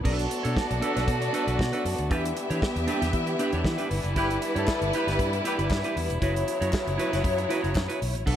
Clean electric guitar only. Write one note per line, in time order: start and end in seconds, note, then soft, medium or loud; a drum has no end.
0.04 0.25 D4 medium
0.04 0.18 A4 medium
0.04 0.17 B4 medium
0.18 muted clean electric guitar stroke soft
0.30 muted clean electric guitar stroke soft
0.43 0.55 D4 medium
0.43 0.56 A4 medium
0.43 0.57 C#5 medium
0.56 muted clean electric guitar stroke soft
0.70 muted clean electric guitar stroke soft
0.81 0.96 D4 medium
0.81 0.95 A4 loud
0.81 0.94 B4 medium
0.96 1.06 D4 soft
0.96 1.07 A4 medium
0.96 1.07 B4 medium
1.07 muted clean electric guitar stroke soft
1.21 muted clean electric guitar stroke medium
1.33 1.47 D4 medium
1.33 1.46 A4 medium
1.33 1.46 B4 medium
1.47 1.58 D4 soft
1.47 1.59 A4 medium
1.47 1.59 B4 medium
1.59 muted clean electric guitar stroke soft
1.73 1.83 D4 medium
1.73 1.84 A4 medium
1.73 1.85 B4 medium
1.85 muted clean electric guitar stroke soft
1.99 muted clean electric guitar stroke soft
2.10 2.31 D4 medium
2.10 2.25 G4 medium
2.10 2.23 B4 medium
2.24 muted clean electric guitar stroke soft
2.36 muted clean electric guitar stroke soft
2.50 2.61 D4 medium
2.50 2.62 G4 medium
2.50 2.63 C#5 medium
2.62 muted clean electric guitar stroke soft
2.75 muted clean electric guitar stroke soft
2.87 3.02 D4 medium
2.87 3.01 G4 medium
2.87 3.00 B4 medium
3.01 3.12 D4 medium
3.01 3.13 G4 medium
3.01 3.13 B4 medium
3.13 muted clean electric guitar stroke soft
3.28 muted clean electric guitar stroke soft
3.39 3.54 D4 medium
3.39 3.53 G4 medium
3.39 3.53 B4 medium
3.53 3.64 D4 medium
3.53 3.65 G4 medium
3.53 3.66 C#5 medium
3.65 muted clean electric guitar stroke soft
3.78 3.90 D4 medium
3.78 3.90 G4 medium
3.78 3.90 B4 medium
3.90 muted clean electric guitar stroke soft
4.04 muted clean electric guitar stroke soft
4.16 4.36 E4 medium
4.16 4.30 G4 medium
4.16 4.28 B4 medium
4.30 muted clean electric guitar stroke soft
4.42 muted clean electric guitar stroke soft
4.55 4.66 E4 medium
4.55 4.67 G4 medium
4.55 4.68 C#5 medium
4.67 muted clean electric guitar stroke soft
4.81 muted clean electric guitar stroke medium
4.94 5.08 E4 medium
4.94 5.07 G4 loud
4.94 5.06 B4 medium
5.08 5.18 E4 medium
5.08 5.19 G4 medium
5.08 5.19 B4 medium
5.20 muted clean electric guitar stroke soft
5.33 muted clean electric guitar stroke soft
5.45 5.59 E4 medium
5.45 5.58 G4 loud
5.45 5.57 B4 medium
5.58 5.70 E4 medium
5.58 5.70 G4 medium
5.58 5.71 B4 medium
5.71 muted clean electric guitar stroke soft
5.85 5.95 E4 medium
5.85 5.96 G4 medium
5.85 5.96 B4 medium
5.97 muted clean electric guitar stroke soft
6.10 muted clean electric guitar stroke soft
6.22 6.42 E4 medium
6.22 6.35 F#4 medium
6.22 6.34 B4 medium
6.35 muted clean electric guitar stroke soft
6.47 muted clean electric guitar stroke soft
6.61 6.72 E4 medium
6.61 6.73 F#4 medium
6.61 6.74 C#5 medium
6.73 muted clean electric guitar stroke soft
6.87 muted clean electric guitar stroke soft
6.98 7.13 E4 medium
6.98 7.12 F#4 medium
6.98 7.11 B4 loud
7.12 7.23 E4 medium
7.12 7.23 F#4 medium
7.12 7.24 B4 medium
7.24 muted clean electric guitar stroke soft
7.37 muted clean electric guitar stroke soft
7.49 7.63 E4 medium
7.49 7.62 F#4 medium
7.49 7.62 B4 medium
7.62 7.73 E4 medium
7.62 7.74 F#4 medium
7.62 7.75 C#5 medium
7.74 muted clean electric guitar stroke soft
7.88 7.99 E4 medium
7.88 8.00 F#4 medium
7.88 8.00 B4 medium
8.01 muted clean electric guitar stroke soft
8.14 muted clean electric guitar stroke soft
8.26 8.36 D4 medium
8.26 8.36 A4 medium
8.26 8.36 B4 medium